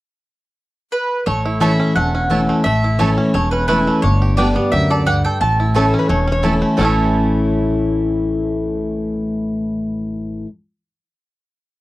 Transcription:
0.92 1.26 B4 medium
1.26 1.78 A1 medium
1.26 1.93 A2 medium
1.26 1.97 A3 medium
1.26 1.59 C#5 medium
1.46 2.31 E4 medium
1.60 1.94 E3 loud
1.60 1.70 A3 medium
1.60 1.94 A3 medium
1.60 1.95 C#4 medium
1.60 1.70 E4 loud
1.60 1.95 E4 loud
1.60 2.10 A4 medium
1.60 1.71 C#5 loud
1.60 1.94 E5 medium
1.60 1.71 A5 loud
1.80 2.13 C#4 medium
1.96 2.47 E1 medium
1.96 2.62 E2 medium
1.96 2.46 A3 medium
1.96 2.63 F#5 medium
2.15 2.62 C#4 medium
2.30 2.63 E3 medium
2.30 2.39 A3 medium
2.30 2.64 A3 medium
2.30 2.64 C#4 medium
2.30 2.40 E4 medium
2.30 2.80 E4 medium
2.30 2.64 E4 medium
2.30 2.40 C#5 medium
2.30 2.40 A5 loud
2.49 2.65 A3 medium
2.64 3.17 A1 medium
2.64 3.31 A2 medium
2.64 3.15 A3 medium
2.64 3.00 E5 medium
2.84 3.32 E4 medium
2.99 3.32 E3 medium
2.99 3.09 A3 medium
2.99 3.33 A3 medium
2.99 3.33 C#4 loud
2.99 3.09 E4 medium
2.99 3.34 E4 medium
2.99 3.49 A4 medium
2.99 3.33 C#5 medium
2.99 3.09 C#5 medium
2.99 3.09 A5 loud
3.18 3.51 C#4 medium
3.34 3.86 E1 medium
3.34 4.00 E2 medium
3.34 3.84 A3 medium
3.34 3.51 C#5 medium
3.51 4.00 C#4 medium
3.51 3.67 B4 medium
3.68 4.02 E3 medium
3.68 3.78 A3 medium
3.68 4.02 A3 medium
3.68 4.02 C#4 medium
3.68 3.78 E4 medium
3.68 4.04 E4 medium
3.68 4.03 E4 medium
3.68 4.01 B4 medium
3.68 3.78 C#5 medium
3.68 3.78 A5 medium
3.87 4.04 A3 medium
4.02 4.55 G1 loud
4.02 4.69 G2 medium
4.02 4.37 D4 medium
4.02 4.35 C#5 loud
4.22 4.69 G4 medium
4.37 4.55 D3 medium
4.37 4.55 G3 medium
4.37 4.47 B3 medium
4.37 4.56 B3 loud
4.37 4.87 D4 medium
4.37 4.47 G4 loud
4.37 4.55 G4 loud
4.37 4.73 D5 medium
4.37 4.47 D5 loud
4.37 4.48 G5 loud
4.56 5.04 B3 medium
4.56 4.73 B3 soft
4.56 4.72 G4 medium
4.72 5.23 D2 medium
4.72 5.05 F#2 medium
4.72 5.06 G4 medium
4.72 4.91 E5 loud
4.90 5.24 A4 medium
4.90 5.06 D5 medium
5.06 5.40 G2 medium
5.06 5.16 B3 medium
5.06 5.16 G4 medium
5.06 5.42 G4 medium
5.06 5.16 D5 medium
5.06 5.24 F#5 loud
5.06 5.16 G5 medium
5.25 5.42 A4 medium
5.25 5.40 G5 medium
5.41 5.92 A1 loud
5.41 6.07 A2 medium
5.41 5.90 A3 medium
5.41 6.40 A5 loud
5.60 6.07 E4 medium
5.74 6.08 E3 medium
5.74 5.84 A3 medium
5.74 6.09 A3 loud
5.74 6.09 C#4 loud
5.74 5.84 E4 medium
5.74 6.10 E4 loud
5.74 5.98 A4 medium
5.74 6.25 A4 medium
5.74 5.85 C#5 loud
5.74 5.85 A5 loud
5.94 6.26 C#4 medium
5.99 6.09 B4 medium
6.09 6.61 E1 medium
6.09 6.76 E2 medium
6.09 6.59 A3 medium
6.09 6.31 C#5 loud
6.28 6.75 C#4 medium
6.32 6.44 C#5 loud
6.43 6.77 E3 medium
6.43 6.53 A3 medium
6.43 6.77 A3 medium
6.43 6.77 C#4 medium
6.43 6.53 E4 medium
6.43 6.78 E4 medium
6.43 6.76 A4 medium
6.43 6.53 C#5 medium
6.43 6.53 A5 medium
6.62 6.78 A3 medium
6.77 10.42 A1 medium
6.77 10.46 A2 medium
6.77 10.47 E3 medium
6.77 10.45 A3 medium
6.77 10.43 A3 medium
6.77 10.47 A3 medium
6.77 10.48 C#4 medium
6.77 10.45 C#4 medium
6.77 10.45 E4 medium
6.77 10.42 C#5 medium
6.77 10.46 C#5 medium
6.77 10.47 A5 medium
6.81 10.49 E4 medium
6.81 10.47 E4 medium
6.81 10.49 A4 medium

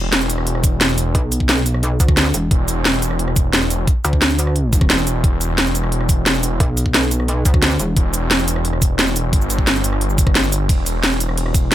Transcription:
0.00 1.13 E1 loud
0.12 snare loud
0.12 closed hi-hat medium
0.21 cabasa soft
0.30 closed hi-hat loud
0.30 cabasa medium
0.38 cross-stick soft
0.47 closed hi-hat medium
0.55 cross-stick soft
0.64 kick loud
0.64 closed hi-hat loud
0.64 cabasa medium
0.81 snare loud
0.81 closed hi-hat medium
0.89 cabasa soft
0.98 closed hi-hat loud
0.98 cabasa medium
1.15 1.99 B1 loud
1.15 kick loud
1.15 closed hi-hat medium
1.32 closed hi-hat medium
1.32 cabasa medium
1.40 kick medium
1.49 snare loud
1.49 closed hi-hat medium
1.57 cabasa soft
1.66 closed hi-hat medium
1.66 cabasa medium
1.74 cross-stick soft
1.83 closed hi-hat medium
2.00 2.33 D2 loud
2.00 kick loud
2.00 closed hi-hat loud
2.00 cabasa medium
2.08 kick loud
2.08 cross-stick soft
2.17 snare loud
2.17 closed hi-hat medium
2.26 cabasa soft
2.34 2.50 E1 loud
2.34 closed hi-hat medium
2.34 cabasa medium
2.51 3.86 E1 loud
2.51 kick loud
2.51 closed hi-hat medium
2.68 closed hi-hat medium
2.68 cabasa medium
2.85 snare loud
2.85 closed hi-hat medium
2.94 cabasa soft
3.02 closed hi-hat medium
3.02 cabasa medium
3.11 cross-stick soft
3.19 closed hi-hat medium
3.28 cross-stick soft
3.36 kick loud
3.36 closed hi-hat medium
3.36 cabasa medium
3.53 snare loud
3.53 closed hi-hat medium
3.62 cabasa soft
3.70 closed hi-hat medium
3.70 cabasa medium
3.87 kick loud
3.87 closed hi-hat medium
4.05 4.88 D2 loud
4.05 closed hi-hat medium
4.05 cabasa medium
4.13 kick medium
4.22 snare loud
4.22 closed hi-hat medium
4.30 cabasa soft
4.39 closed hi-hat medium
4.39 cabasa medium
4.47 cross-stick soft
4.56 closed hi-hat medium
4.73 kick loud
4.73 closed hi-hat medium
4.73 cabasa medium
4.81 kick loud
4.81 cross-stick soft
4.90 5.23 E1 loud
4.90 snare loud
4.90 closed hi-hat medium
4.98 cabasa soft
5.07 closed hi-hat medium
5.07 cabasa medium
5.24 6.59 E1 loud
5.24 kick loud
5.24 closed hi-hat medium
5.41 closed hi-hat medium
5.41 cabasa medium
5.58 snare loud
5.58 closed hi-hat medium
5.67 cabasa soft
5.75 closed hi-hat medium
5.75 cabasa medium
5.83 cross-stick soft
5.92 closed hi-hat medium
6.01 cross-stick soft
6.09 kick loud
6.09 closed hi-hat medium
6.09 cabasa medium
6.26 snare loud
6.26 closed hi-hat medium
6.35 cabasa soft
6.43 closed hi-hat medium
6.43 cabasa medium
6.60 7.44 B1 loud
6.60 kick loud
6.60 closed hi-hat medium
6.77 closed hi-hat medium
6.77 cabasa medium
6.86 kick medium
6.94 snare loud
6.94 closed hi-hat medium
7.03 cabasa soft
7.11 closed hi-hat medium
7.11 cabasa medium
7.20 cross-stick soft
7.28 closed hi-hat medium
7.45 7.78 D2 loud
7.45 kick loud
7.45 closed hi-hat medium
7.45 cabasa medium
7.54 kick loud
7.54 cross-stick soft
7.62 snare loud
7.62 closed hi-hat medium
7.71 cabasa soft
7.79 7.95 E1 loud
7.79 closed hi-hat medium
7.79 cabasa medium
7.97 9.32 E1 loud
7.97 kick loud
7.97 closed hi-hat medium
8.14 closed hi-hat loud
8.14 cabasa medium
8.31 snare loud
8.31 closed hi-hat medium
8.39 cabasa soft
8.48 closed hi-hat loud
8.48 cabasa medium
8.56 cross-stick soft
8.65 closed hi-hat medium
8.73 cross-stick soft
8.82 kick loud
8.82 closed hi-hat loud
8.82 cabasa medium
8.99 snare loud
8.99 closed hi-hat medium
9.07 cabasa soft
9.16 closed hi-hat medium
9.16 cabasa medium
9.33 9.83 G1 loud
9.33 kick loud
9.33 closed hi-hat medium
9.41 cabasa soft
9.50 closed hi-hat loud
9.50 cabasa medium
9.59 kick medium
9.67 snare loud
9.67 closed hi-hat medium
9.76 cabasa soft
9.84 10.68 G1 loud
9.84 closed hi-hat loud
9.84 cabasa medium
9.93 cross-stick soft
10.01 closed hi-hat medium
10.10 cabasa soft
10.18 kick loud
10.18 closed hi-hat loud
10.18 cabasa medium
10.27 kick loud
10.27 cross-stick soft
10.35 snare loud
10.35 closed hi-hat medium
10.44 cabasa soft
10.52 closed hi-hat loud
10.52 cabasa medium
10.69 11.75 E1 loud
10.69 kick loud
10.69 closed hi-hat medium
10.69 ride medium
10.86 closed hi-hat loud
10.86 ride medium
10.86 cabasa medium
11.03 snare loud
11.03 closed hi-hat medium
11.03 ride medium
11.12 cabasa soft
11.20 closed hi-hat loud
11.20 ride medium
11.20 cabasa medium
11.29 cross-stick soft
11.37 closed hi-hat medium
11.37 ride medium
11.46 cross-stick soft
11.54 kick loud
11.54 closed hi-hat loud
11.54 ride medium
11.54 cabasa medium
11.72 snare loud
11.72 closed hi-hat medium
11.72 ride medium

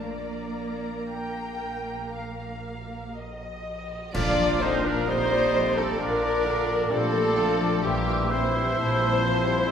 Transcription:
0.00 3.90 A#1 soft
0.00 3.75 A#2 soft
0.00 1.72 F3 soft
0.00 3.11 A#3 medium
0.00 3.80 D4 soft
0.00 3.84 F4 soft
0.00 3.89 A#4 soft
0.00 3.11 A#4 medium
0.00 0.98 D5 soft
0.00 3.15 A#5 medium
1.11 2.10 G5 medium
2.15 3.16 F5 medium
3.17 4.15 D#5 medium
4.14 4.97 A#1 medium
4.14 4.96 A#2 medium
4.14 7.83 A#2 medium
4.14 4.36 D3 medium
4.14 5.09 F3 medium
4.14 4.57 D4 loud
4.14 4.36 F4 medium
4.14 4.58 F4 medium
4.14 4.57 D5 loud
4.14 4.63 D5 medium
4.14 4.58 D5 loud
4.14 5.11 F5 medium
4.14 6.03 A#5 medium
4.14 concert bass drum medium
4.14 crash medium
4.37 4.61 F3 medium
4.37 7.13 F3 medium
4.37 4.61 D4 medium
4.61 4.84 D3 medium
4.61 4.84 C4 loud
4.61 6.89 D4 medium
4.61 4.84 D#4 loud
4.61 4.84 F4 medium
4.61 4.84 C5 medium
4.61 4.88 C5 medium
4.84 5.08 F3 medium
4.84 5.07 A#3 medium
4.84 5.08 D4 medium
4.84 7.88 F4 medium
4.84 5.07 A#4 medium
4.84 5.08 A#4 medium
4.84 5.09 A#4 medium
5.07 5.90 A#1 medium
5.07 5.89 A#2 medium
5.07 5.30 D3 medium
5.07 6.01 G3 medium
5.07 5.77 C4 loud
5.07 5.77 D#4 loud
5.07 5.30 F4 medium
5.07 6.67 A#4 medium
5.07 5.77 C5 medium
5.07 5.77 C5 loud
5.07 5.80 C5 loud
5.07 6.90 D5 medium
5.31 5.55 F3 medium
5.31 5.54 D4 medium
5.31 7.87 D5 medium
5.55 5.78 D3 medium
5.55 5.78 F4 medium
5.55 5.99 F5 medium
5.77 6.01 F3 medium
5.77 6.00 A3 medium
5.77 6.00 C4 medium
5.77 6.00 D4 medium
5.77 6.00 A4 medium
5.77 6.02 A4 medium
5.77 6.22 A#5 medium
5.99 6.79 A#1 medium
5.99 6.79 A#2 medium
5.99 6.21 D3 medium
5.99 6.46 F3 medium
5.99 6.89 A#3 medium
5.99 6.89 D4 medium
5.99 6.22 F4 medium
5.99 6.89 A#4 loud
5.99 6.88 A#4 medium
5.99 6.92 A#4 medium
5.99 6.44 F5 medium
5.99 6.90 D6 medium
6.22 6.45 F3 medium
6.22 6.45 D4 medium
6.22 9.71 A#5 medium
6.45 6.67 D3 medium
6.45 6.93 D3 medium
6.45 6.67 F4 medium
6.45 7.88 F5 medium
6.68 6.90 F3 medium
6.68 6.90 D4 medium
6.68 9.71 A#4 medium
6.89 7.72 A#1 medium
6.89 7.72 A#2 medium
6.89 7.11 D3 medium
6.89 7.38 G3 medium
6.89 7.83 A3 medium
6.89 7.84 C4 medium
6.89 7.36 D4 medium
6.89 7.11 F4 medium
6.89 7.86 A4 medium
6.89 7.84 A4 loud
6.89 7.84 A4 medium
6.89 7.87 D5 medium
6.89 7.87 D6 medium
7.13 7.36 F3 medium
7.13 7.60 F3 medium
7.13 7.36 D4 medium
7.35 7.59 D3 medium
7.35 7.84 F3 medium
7.35 7.88 D4 medium
7.35 7.59 F4 medium
7.59 7.83 F3 medium
7.59 7.88 F3 medium
7.59 7.83 D4 medium
7.83 8.67 A#1 medium
7.83 8.67 A#2 medium
7.83 9.71 A#2 medium
7.83 8.05 E3 medium
7.83 8.76 E3 medium
7.83 8.32 G3 medium
7.83 8.31 A#3 medium
7.83 8.06 E4 medium
7.83 8.31 G4 loud
7.83 8.31 G4 medium
7.83 8.33 G4 medium
7.83 9.66 E5 medium
7.83 8.81 C6 medium
8.07 8.31 G3 medium
8.07 9.71 A#3 soft
8.07 8.31 G4 medium
8.31 8.55 E3 medium
8.31 9.71 C4 medium
8.31 9.71 E4 medium
8.31 8.55 E4 medium
8.31 9.71 E4 medium
8.31 9.71 C5 loud
8.31 9.71 C5 medium
8.54 8.77 G3 medium
8.54 8.77 G4 medium
8.54 9.71 G4 medium
8.76 9.56 A#1 medium
8.76 9.56 A#2 medium
8.76 8.98 E3 medium
8.76 9.24 E3 medium
8.76 8.98 E4 medium
8.76 9.71 C5 medium
8.76 9.69 A5 medium
8.99 9.22 G3 medium
8.99 9.22 G4 medium
8.99 9.71 E5 medium
9.22 9.44 E3 medium
9.22 9.66 F3 medium
9.22 9.44 E4 medium
9.22 9.66 G5 medium
9.43 9.66 G3 medium
9.43 9.66 G4 medium
9.43 9.71 C6 medium
9.65 9.71 A#1 medium
9.65 9.71 A#2 medium
9.65 9.71 E3 medium
9.65 9.71 G3 medium
9.65 9.71 E4 medium
9.65 9.71 E5 medium
9.65 9.71 G5 medium

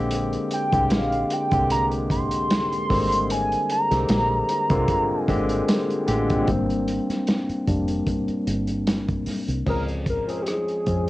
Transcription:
0.00 0.36 A#1 loud
0.00 0.51 D3 medium
0.00 0.51 G#3 medium
0.00 0.51 A#3 medium
0.00 0.51 C4 medium
0.00 0.52 G4 loud
0.11 closed hi-hat medium
0.33 closed hi-hat soft
0.51 0.95 G5 loud
0.51 closed hi-hat medium
0.72 0.91 C2 medium
0.72 1.28 D3 medium
0.72 1.28 G#3 medium
0.72 1.29 A#3 medium
0.72 1.29 C4 medium
0.72 1.29 G4 medium
0.72 kick medium
0.72 closed hi-hat medium
0.90 1.23 A#1 medium
0.90 1.35 F5 loud
0.90 snare loud
0.90 closed hi-hat medium
1.12 closed hi-hat soft
1.30 1.71 G5 medium
1.30 closed hi-hat medium
1.51 2.86 C2 medium
1.51 2.66 D3 medium
1.51 2.66 G#3 medium
1.51 2.66 A#3 medium
1.51 2.66 C4 medium
1.51 2.66 G4 medium
1.51 kick medium
1.51 closed hi-hat medium
1.70 1.85 A#5 loud
1.70 closed hi-hat medium
1.91 closed hi-hat soft
2.10 3.33 C6 loud
2.10 kick medium
2.10 closed hi-hat medium
2.31 closed hi-hat medium
2.51 snare loud
2.51 closed hi-hat loud
2.72 closed hi-hat soft
2.89 3.55 G#1 medium
2.89 3.69 D3 medium
2.89 3.70 G3 medium
2.89 3.69 G#3 medium
2.89 3.70 A#3 medium
2.89 3.70 C4 medium
2.89 kick loud
2.89 snare soft
2.89 open hi-hat medium
3.12 closed hi-hat medium
3.30 3.70 G#5 loud
3.30 closed hi-hat medium
3.52 closed hi-hat soft
3.70 5.22 A#5 loud
3.70 closed hi-hat medium
3.91 4.06 C2 medium
3.91 4.47 D3 medium
3.91 4.47 G#3 medium
3.91 4.47 A#3 medium
3.91 4.47 C4 medium
3.91 4.47 G4 medium
3.91 snare soft
3.91 closed hi-hat medium
4.09 4.41 A#1 medium
4.09 snare loud
4.09 closed hi-hat medium
4.49 closed hi-hat medium
4.70 4.85 C2 medium
4.70 5.13 D3 medium
4.70 5.13 G#3 medium
4.70 5.13 A#3 medium
4.70 5.13 C4 medium
4.70 5.13 F4 medium
4.70 kick loud
4.70 closed hi-hat medium
4.88 kick loud
4.88 closed hi-hat medium
5.22 6.06 G#5 loud
5.28 5.61 G#1 medium
5.28 5.87 D3 medium
5.28 5.87 G#3 medium
5.28 5.87 A#3 medium
5.28 5.87 C4 medium
5.28 5.88 G4 loud
5.28 kick medium
5.28 closed hi-hat medium
5.49 closed hi-hat soft
5.68 snare loud
5.68 closed hi-hat loud
5.90 closed hi-hat soft
6.07 6.41 A1 medium
6.07 6.37 D3 medium
6.07 6.37 G#3 medium
6.07 6.38 A#3 medium
6.07 6.37 C4 medium
6.07 6.38 G4 medium
6.07 closed hi-hat medium
6.30 kick medium
6.30 closed hi-hat medium
6.47 6.98 G#1 medium
6.47 7.66 G3 soft
6.47 7.67 A#3 soft
6.47 7.67 C4 soft
6.47 7.67 D4 soft
6.47 kick loud
6.47 closed hi-hat medium
6.70 closed hi-hat soft
6.88 closed hi-hat medium
7.09 muted fingered electric bass stroke soft
7.09 snare soft
7.09 closed hi-hat soft
7.27 snare loud
7.27 closed hi-hat medium
7.49 muted fingered electric bass stroke soft
7.49 closed hi-hat soft
7.67 8.00 F1 medium
7.67 8.04 G3 soft
7.67 8.04 A#3 soft
7.67 8.04 C4 soft
7.67 8.04 D4 soft
7.67 kick medium
7.67 closed hi-hat medium
7.88 closed hi-hat soft
8.07 kick medium
8.07 closed hi-hat medium
8.28 muted fingered electric bass stroke soft
8.28 closed hi-hat soft
8.47 9.12 G1 medium
8.47 closed hi-hat medium
8.67 closed hi-hat soft
8.87 snare loud
8.87 closed hi-hat medium
9.08 kick medium
9.08 closed hi-hat soft
9.26 muted fingered electric bass stroke soft
9.26 snare soft
9.26 open hi-hat medium
9.48 9.63 C2 medium
9.48 closed hi-hat soft
9.66 10.17 C#2 medium
9.66 10.10 F3 medium
9.66 10.10 G#3 medium
9.66 10.10 C4 medium
9.66 10.11 C#4 medium
9.66 10.11 G#4 medium
9.66 9.84 A#4 loud
9.66 kick medium
9.66 crash medium
9.88 closed hi-hat soft
10.06 10.44 A#4 medium
10.06 kick medium
10.06 closed hi-hat medium
10.27 10.71 F3 medium
10.27 10.71 G#3 medium
10.27 10.71 C4 medium
10.27 10.72 C#4 medium
10.27 10.72 G#4 medium
10.27 closed hi-hat soft
10.42 10.51 G4 medium
10.47 11.10 G#4 loud
10.47 cross-stick medium
10.47 closed hi-hat medium
10.68 closed hi-hat soft
10.86 11.10 F2 medium
10.86 11.10 F3 medium
10.86 11.10 G#3 soft
10.86 11.10 C4 medium
10.86 11.10 C#4 soft
10.86 11.10 G#4 medium
10.86 kick medium
10.86 closed hi-hat medium

